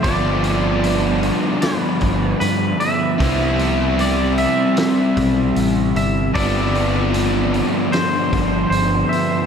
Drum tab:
HH |oooooooo|oooooooo|oooooooo|
SD |----o---|----o---|----o---|
BD |o----o--|o----o--|o----o--|